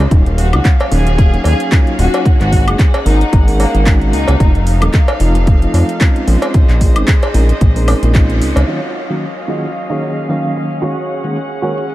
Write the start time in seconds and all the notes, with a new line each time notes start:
0.11 D#1 F#3 A#3 C#4 D#4 F4 F5, kick, closed hi-hat
0.26 closed hi-hat
0.38 F#4, open hi-hat
0.53 C#2 F#3 A#3 C#4 D#4 F#4, closed hi-hat, high woodblock
0.65 kick, clap, closed hi-hat
0.80 closed hi-hat, cowbell
0.91 D#1 F#3 A#3 C#4 D#4 G#4, open hi-hat
1.07 closed hi-hat
1.18 kick, closed hi-hat
1.33 F#3 A#3 C#4 D#4 G#4, closed hi-hat
1.44 D#2 G#4, open hi-hat, cowbell
1.60 closed hi-hat
1.72 F#3 A#3 C#4 D#4 F4, kick, clap, closed hi-hat
1.87 closed hi-hat
1.98 D#1 F#4, open hi-hat
2.14 closed hi-hat, cowbell
2.25 G#1 G#3 A#3 C#4 D#4 F#4 G#4 F#5, kick, closed hi-hat
2.40 G#1 F#4, clap, closed hi-hat
2.52 kick, open hi-hat
2.67 F#1 G#3 A#3 C#4 D#4 G#4, closed hi-hat, high woodblock
2.79 kick, clap, closed hi-hat
2.94 closed hi-hat, cowbell
3.06 G#1 G#3 A#3 C#4 D#4 A#4, open hi-hat
3.21 closed hi-hat
3.33 G#1, kick, closed hi-hat
3.47 G#3 A#3 C#4 D#4 A#4, open hi-hat
3.60 A#3, open hi-hat, cowbell
3.74 G#1, closed hi-hat
3.86 G#3 A#3 C#4 D#4 F#4, kick, clap, closed hi-hat
4.02 closed hi-hat
4.13 C#2 D#4, open hi-hat
4.28 C#2, closed hi-hat, cowbell
4.40 F1 F3 A3 C4 D#4 F4 A4 F5, kick, closed hi-hat
4.55 closed hi-hat
4.67 open hi-hat
4.81 D#1 F3 A3 C4 D#4 A4, closed hi-hat, high woodblock
4.94 kick, clap, closed hi-hat
5.08 closed hi-hat, cowbell
5.20 F1 F3 A3 C4 D#4 F4, open hi-hat
5.35 closed hi-hat
5.47 kick, closed hi-hat
5.62 F3 A3 C4 D#4 F4, closed hi-hat
5.74 F2, open hi-hat, cowbell
5.89 closed hi-hat
6.00 G#3 C4 C#4 D#4 F4, kick, clap, closed hi-hat
6.16 closed hi-hat
6.27 A#1 G#4 C5 D#5, open hi-hat
6.42 closed hi-hat, cowbell
6.54 A#1 G#3 C4 C#4 D#4 F4, kick, closed hi-hat
6.69 A#1, clap, closed hi-hat
6.81 kick, open hi-hat
6.96 G#1 G#3 C4 C#4 D#4 G#4, closed hi-hat, high woodblock
7.08 kick, clap, closed hi-hat
7.23 closed hi-hat, cowbell
7.34 A#1 G#3 C4 C#4 D#4 A#4, open hi-hat
7.49 closed hi-hat
7.61 A#1, kick, closed hi-hat
7.76 G#3 C4 C#4 D#4 A#4, open hi-hat
7.88 open hi-hat, cowbell, high woodblock
8.03 A#1, closed hi-hat
8.14 G#3 C4 C#4 D#4 F4, kick, clap, closed hi-hat
8.30 closed hi-hat
8.41 C#2, open hi-hat
8.56 C#2, closed hi-hat, cowbell
8.68 D#3 F#3 A#3 C#4 D#4 F4 F#4 C#5 D#5 F5, closed hi-hat
9.10 D#3 F#3 A#3 C#4 F#4, closed hi-hat
9.22 closed hi-hat
9.48 D#3 F#3 A#3 C#4 D#4 F4 F#4 G#4 D#5
9.64 closed hi-hat
9.75 closed hi-hat
9.90 D#3 F#3 A#3 C#4 D#4 F4 F#4 G#4 C#5
10.17 closed hi-hat
10.29 D#3 F#3 A#3 C#4 F5, muted clean electric guitar stroke, closed hi-hat
10.43 muted clean electric guitar stroke
10.55 muted clean electric guitar stroke
10.71 closed hi-hat
10.82 D#3 G#3 A#3 C#4 F#4 G#4 C#5 F#5, closed hi-hat
11.24 D#3 G#3 A#3 C#4 G#4, closed hi-hat
11.36 closed hi-hat
11.62 D#3 G#3 A#3 C#4 F#4 G#4 A#4 C#5
11.78 closed hi-hat
11.90 closed hi-hat